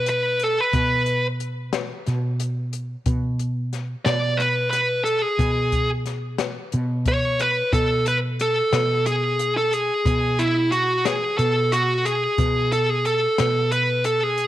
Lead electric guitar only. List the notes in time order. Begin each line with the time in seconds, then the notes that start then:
0.09 B4
0.43 A4
0.61 B4
4.05 D5
4.37 B4
4.70 B4
5.04 A4
5.22 G#4
7.08 C#5
7.41 B4
7.73 A4
8.08 B4
8.41 A4
9.07 G#4
9.57 A4
9.73 G#4
10.39 E4
10.72 F#4
11.05 G#4
11.38 A4
11.72 F#4
12.05 G#4
12.73 A4
12.89 G#4
13.06 A4
13.72 B4
14.06 A4
14.23 G#4